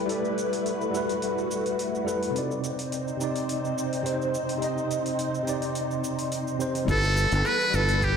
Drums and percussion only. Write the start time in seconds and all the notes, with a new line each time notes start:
0.09 open hi-hat, cabasa
0.25 cabasa
0.38 open hi-hat, cabasa
0.53 open hi-hat, cabasa
0.66 open hi-hat, cabasa
0.81 cabasa
0.95 cabasa
1.09 open hi-hat, cabasa
1.22 open hi-hat, cabasa
1.38 cabasa
1.51 cabasa
1.66 open hi-hat, cabasa
1.79 open hi-hat, cabasa
1.95 cabasa
2.08 cabasa
2.23 open hi-hat, cabasa
2.36 open hi-hat, cabasa
2.51 cabasa
2.64 open hi-hat, cabasa
2.79 open hi-hat, cabasa
2.92 open hi-hat, cabasa
3.08 cabasa
3.21 cabasa
3.36 open hi-hat, cabasa
3.49 open hi-hat, cabasa
3.65 cabasa
3.78 cabasa
3.93 open hi-hat, cabasa
4.06 open hi-hat, cabasa
4.22 cabasa
4.35 cabasa
4.49 open hi-hat, cabasa
4.62 open hi-hat, cabasa
4.78 cabasa
4.91 open hi-hat, cabasa
5.06 open hi-hat, cabasa
5.19 open hi-hat, cabasa
5.35 cabasa
5.47 open hi-hat, cabasa
5.62 open hi-hat, cabasa
5.75 open hi-hat, cabasa
5.91 cabasa
6.04 cabasa
6.19 open hi-hat, cabasa
6.32 open hi-hat, cabasa
6.48 cabasa
6.60 cabasa
6.75 open hi-hat, cabasa
6.88 kick, open hi-hat, crash, cabasa
7.04 cabasa
7.17 open hi-hat, cabasa
7.32 open hi-hat, cabasa
7.45 cross-stick, open hi-hat, cabasa
7.61 cabasa
7.74 cabasa
7.89 open hi-hat, cabasa
8.01 kick, open hi-hat, cabasa